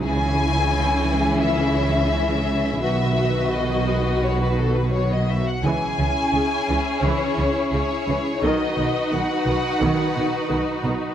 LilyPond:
<<
  \new Staff \with { instrumentName = "Violin section" } { \time 4/4 \key cis \minor \tempo 4 = 86 gis''2 e''2 | e''4 dis''4 cis''16 b'16 a'16 b'16 cis''16 dis''16 e''16 fis''16 | gis''2 cis''4 cis''4 | dis''4 fis''2~ fis''8 r8 | }
  \new Staff \with { instrumentName = "Violin section" } { \time 4/4 \key cis \minor <e' gis'>1 | <fis' b'>2.~ <fis' b'>8 r8 | <e' gis'>1 | <fis' b'>1 | }
  \new Staff \with { instrumentName = "Viola section" } { \clef bass \time 4/4 \key cis \minor << { cis'1 | fis'2.~ fis'8 r8 | cis'1 | dis'1 | } \\ { e1 | dis2.~ dis8 r8 | e8 e8 cis8 e8 e8 e8 cis8 e8 | dis8 dis8 dis8 dis8 dis8 dis8 dis8 dis8 | } >> }
  \new Staff \with { instrumentName = "Cello section" } { \clef bass \time 4/4 \key cis \minor cis1 | b,2.~ b,8 r8 | cis8 cis8 cis8 cis8 cis8 cis8 cis8 cis8 | b,8 b,8 b,8 b,8 b,8 b,8 b,8 b,8 | }
  \new Staff \with { instrumentName = "Double bass section" } { \clef bass \time 4/4 \key cis \minor cis,1 | b,,2.~ b,,8 r8 | cis,8 cis,8 cis,8 cis,8 cis,8 cis,8 cis,8 cis,8 | b,,8 b,,8 b,,8 b,,8 b,,8 b,,8 b,,8 b,,8 | }
>>